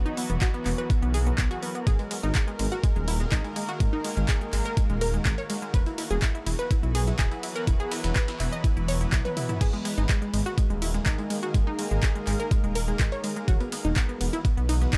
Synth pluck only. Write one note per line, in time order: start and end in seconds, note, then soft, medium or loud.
0.06 0.12 D#4 medium
0.17 0.25 B3 medium
0.30 0.37 B3 medium
0.42 0.49 F#4 loud
0.54 0.61 B3 medium
0.66 0.73 B3 medium
0.78 0.85 B4 medium
0.90 0.97 B3 medium
1.02 1.09 B3 medium
1.14 1.21 G#4 medium
1.27 1.33 B3 medium
1.38 1.46 B3 medium
1.51 1.58 F#4 loud
1.62 1.70 B3 medium
1.75 1.82 B3 medium
1.87 1.94 G#4 medium
1.99 2.06 G#3 medium
2.11 2.18 G#3 medium
2.23 2.30 D#4 medium
2.35 2.42 G#3 medium
2.48 2.54 G#3 medium
2.59 2.67 G#3 medium
2.72 2.79 F#4 medium
2.84 2.91 G#3 medium
2.96 3.03 G#3 medium
3.08 3.15 E4 medium
3.20 3.27 G#3 medium
3.32 3.39 D#4 medium
3.44 3.51 G#3 medium
3.56 3.63 G#3 medium
3.69 3.75 F#4 medium
3.80 3.88 G#3 medium
3.93 4.00 D#4 medium
4.05 4.12 G#3 medium
4.17 4.24 G#3 medium
4.29 4.36 G#4 loud
4.41 4.48 G#3 medium
4.53 4.60 G#3 medium
4.66 4.72 A#4 medium
4.77 4.84 G#3 medium
4.90 4.96 G#3 medium
5.01 5.09 A#4 loud
5.14 5.21 G#3 medium
5.26 5.33 G#3 medium
5.38 5.45 C#5 medium
5.50 5.57 G#3 medium
5.62 5.69 G#3 medium
5.74 5.81 B4 loud
5.86 5.93 E4 medium
5.98 6.05 E4 medium
6.11 6.17 G#4 medium
6.22 6.29 E4 medium
6.35 6.41 E4 medium
6.46 6.54 E4 medium
6.59 6.66 B4 medium
6.71 6.78 E4 medium
6.83 6.90 E4 medium
6.95 7.02 G#4 loud
7.07 7.14 E4 medium
7.19 7.26 G#4 medium
7.32 7.38 E4 medium
7.43 7.50 E4 medium
7.56 7.62 A#4 medium
7.67 7.75 E4 medium
7.80 7.87 G#4 medium
7.92 7.99 E4 medium
8.04 8.11 E4 medium
8.16 8.23 B4 loud
8.28 8.35 E4 medium
8.40 8.47 E4 medium
8.52 8.59 D#5 medium
8.64 8.71 E4 medium
8.77 8.83 E4 medium
8.88 8.96 C#5 loud
9.01 9.08 E4 medium
9.13 9.20 E4 medium
9.25 9.32 B4 medium
9.37 9.44 E4 medium
9.49 9.56 E4 medium
9.61 9.68 G#4 loud
9.73 9.80 G#3 medium
9.85 9.92 G#3 medium
9.98 10.04 D#4 medium
10.09 10.17 G#3 medium
10.22 10.29 G#3 medium
10.33 10.41 G#3 medium
10.46 10.53 F#4 medium
10.58 10.65 G#3 medium
10.70 10.77 G#3 medium
10.82 10.89 E4 medium
10.94 11.01 G#3 medium
11.06 11.13 D#4 medium
11.19 11.25 G#3 medium
11.30 11.38 G#3 medium
11.43 11.50 F#4 medium
11.55 11.62 G#3 medium
11.67 11.74 D#4 medium
11.79 11.86 G#3 medium
11.91 11.98 G#3 medium
12.03 12.10 G#4 medium
12.15 12.22 G#3 medium
12.27 12.34 G#3 medium
12.40 12.46 A#4 loud
12.51 12.59 G#3 medium
12.64 12.71 G#3 medium
12.76 12.83 A#4 medium
12.88 12.95 G#3 medium
13.00 13.07 G#3 medium
13.12 13.19 C#5 medium
13.24 13.31 G#3 medium
13.36 13.43 G#3 medium
13.48 13.55 F#4 loud
13.61 13.67 B3 medium
13.72 13.80 B3 medium
13.85 13.92 D#4 medium
13.96 14.04 B3 medium
14.09 14.16 B3 medium
14.21 14.28 B3 medium
14.33 14.40 E4 medium
14.45 14.52 B3 medium
14.57 14.64 B3 medium
14.69 14.76 D#4 loud
14.82 14.88 B3 medium
14.93 14.98 D#4 medium